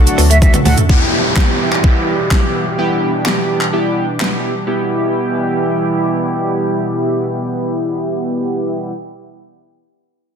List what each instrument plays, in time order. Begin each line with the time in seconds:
Already playing: fm bass C2, analog synth pad A2 D3 F#3 D4 F#4, analog polysynth A3 D4 F#4 A4
0.06 flute F#5, closed hi-hat, shaker
0.18 fm bass D2, clean electric guitar B3, open hi-hat, shaker
0.30 clean electric guitar A3, flute E5, closed hi-hat, shaker
0.42 analog polysynth A3 D4 F#4 A4, flute E5, muted clean electric guitar stroke, kick, high tom, shaker
0.54 clean electric guitar B3, closed hi-hat, mid tom, shaker
0.65 fm bass D2, analog polysynth A3 D4 F#4 A4, clean electric guitar A3, flute F#5, mid tom, open hi-hat, shaker
0.78 closed hi-hat, floor tom, shaker
0.89 analog synth pad B2 E3 G3 E4 G4, analog polysynth B3 E4 G4, kick, downlifter
1.36 analog polysynth B3 E4 G4, kick, snare, clap
1.72 clap
1.83 analog polysynth B3 E4 G4, kick
2.31 analog polysynth B3 E4 G4, kick, snare, clap
2.78 analog polysynth B3 E4 G4, analog synth pad D4
3.25 analog polysynth B3 E4 G4, snare, clap
3.61 clap
3.72 analog polysynth B3 E4 G4
4.20 analog polysynth B3 E4 G4, snare, clap
4.67 analog synth pad B2 E3 G3 E4 G4, analog polysynth B3 E4 G4